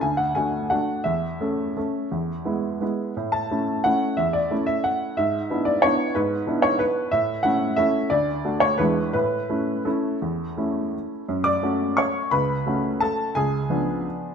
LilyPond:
\new Staff \with { instrumentName = "Upright piano" } { \time 3/4 \key a \major \tempo 4 = 175 << { gis''8 fis''8 gis''4 fis''4 | e''2.~ | e''2~ e''8 r8 | r8 a''4. fis''4 |
e''8 d''4 e''8 fis''4 | e''4. d''8 cis''4 | b'4. cis''8 b'4 | e''4 fis''4 e''4 |
d''4. cis''8 b'4 | b'2 a'4~ | a'2~ a'8 r8 | \key fis \minor r8 <d'' d'''>4. <cis'' cis'''>4 |
<b' b''>2 <a' a''>4 | <gis' gis''>2. | } \\ { d,4 <a d' fis'>4 <a d' fis'>4 | e,4 <a cis' a'>4 <a cis' a'>4 | e,4 <gis b e'>4 <gis b e'>4 | a,4 <a cis' e'>4 <a cis' e'>4 |
e,4 <a cis' e'>2 | gis,4 <b d' e'>4 <b d' e'>4 | gis,4 <b d' e'>2 | a,4 <a cis' e'>4 <a cis' e'>4 |
d,4 <a d' fis'>4 <e, gis d' e'>4 | a,4 <a cis' e'>4 <a cis' e'>4 | e,4 <a cis' e'>2 | fis,4 <a cis' fis'>2 |
cis,4 <a cis' fis'>2 | cis,4 <eis b d'>2 | } >> }